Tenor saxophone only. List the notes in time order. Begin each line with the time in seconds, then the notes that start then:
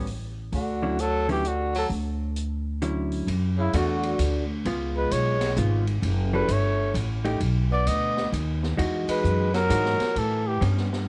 0.54 D3
1.00 F#3
1.29 E3
1.45 D3
1.75 F#3
3.57 C#3
3.75 D3
4.97 G#3
5.12 G#3
6.33 G3
6.50 A3
7.71 B3
7.87 B3
9.09 G#3
9.54 F#3
10.17 E3
10.46 E3